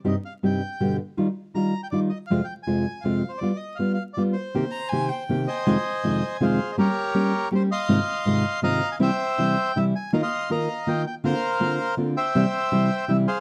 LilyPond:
<<
  \new Staff \with { instrumentName = "Violin" } { \time 3/4 \key c \minor \tempo 4 = 161 r2. | r2. | r2. | r2. |
r8 bes''8 aes''8 g''4. | \key f \minor r2. | r2. | r2. |
r2. | r2. | r2. | r2. | }
  \new Staff \with { instrumentName = "Bandoneon" } { \time 3/4 \key c \minor << { ees''8 f''8 g''4. r8 | r4 bes''8. g''16 d''8 ees''8 | f''8 g''8 aes''4 f''8. c''16 | d''8 ees''8 f''8 f''8 d''8 c''8~ |
c''2 r8 aes''8~ | \key f \minor aes''2 f''8. ees''16 | des''2 c''8 c'''8~ | c'''2 bes''8. aes''16 |
g''2 e''8 aes''8 | bes''16 c'''8. bes''4 g''8 g''8 | f''2 r8 g''8~ | g''2 e''8 f''8 | } \\ { r2. | r2. | r2. | r2. |
r2 r8 <c'' ees''>8~ | <c'' ees''>2 <aes' c''>4 | <g' bes'>2 r8 <ees'' f''>8~ | <ees'' f''>2 <ees'' f''>4 |
<c'' e''>2 r4 | <ees'' f''>16 <ees'' f''>8. <ees'' f''>4. r8 | <bes' c''>2 r8 <c'' e''>8~ | <c'' e''>2 r8 <aes' c''>8 | } >> }
  \new Staff \with { instrumentName = "Nylon-string guitar" } { \time 3/4 \key c \minor <g, c g c' ees' g'>16 r8. <g, c g c' ees' g'>8 r8 <g, b, d g b g'>8 r8 | <ees g ees' f'>16 r8. <ees g ees' f'>8 r8 <ees g ees' f'>8 r8 | <f, c f aes c' f'>16 r8. <f, c f aes c' f'>8 r8 <f, c f aes c' f'>8 r8 | <g b f'>16 r8. <g b f'>8 r8 <g b f'>8 r8 |
<c ees bes c' g'>16 r8. <c ees bes c' g'>8 r8 <c ees bes c' g'>8 r8 | \key f \minor <f, c ees aes c' f'>16 r8. <f, c ees aes c' f'>8 r8 <f, c ees aes c' f'>8 r8 | <g bes des' g'>16 r8. <g bes des' g'>8 r8 <g bes des' g'>8 r8 | <aes, c ees aes c' f'>16 r8. <aes, c ees aes c' f'>8 r8 <aes, c ees aes c' f'>8 r8 |
<c e g c' e'>16 r8. <c e g c' e'>8 r8 <c e g c' e'>8 r8 | <ees bes ees' f' bes'>16 r8. <ees bes ees' f' bes'>8 r8 <ees bes ees' f' bes'>8 r8 | <d bes c' f'>16 r8. <d bes c' f'>8 r8 <d bes c' f'>8 r8 | <c e g c' e'>16 r8. <c e g c' e'>8 r8 <c e g c' e'>8 r8 | }
>>